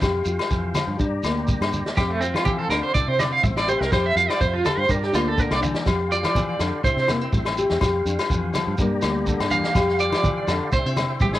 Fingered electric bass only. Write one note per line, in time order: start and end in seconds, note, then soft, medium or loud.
0.02 0.23 F2 loud
0.25 0.37 F2 medium
0.51 0.72 F2 loud
0.87 0.97 G2 medium
1.00 1.20 G2 medium
1.23 1.55 D2 medium
1.61 1.82 G2 loud
1.97 2.36 F2 medium
2.34 2.65 F3 medium
2.69 2.81 D2 medium
2.95 3.06 C2 loud
3.08 3.38 C3 medium
3.43 3.75 A1 medium
3.81 3.90 C2 medium
3.92 4.13 F2 loud
4.16 4.27 F2 medium
4.41 4.62 F2 loud
4.77 4.87 G2 medium
4.89 5.10 G2 loud
5.13 5.45 D2 medium
5.51 5.72 C2 medium
5.86 6.26 F2 medium
6.24 6.54 F3 medium
6.59 6.71 F2 medium
6.84 6.95 C2 loud
6.96 7.27 C3 medium
7.33 7.64 A1 medium
7.71 7.80 E2 medium
7.81 8.02 F2 loud
8.05 8.17 F2 medium
8.30 8.51 F2 loud
8.67 8.77 G2 medium
8.79 8.99 G2 loud
9.03 9.34 D2 loud
9.40 9.61 G2 loud
9.75 10.13 F2 loud
10.12 10.42 F3 medium
10.47 10.59 F2 medium
10.72 10.84 C2 loud
10.86 11.16 C3 loud
11.21 11.39 A1 medium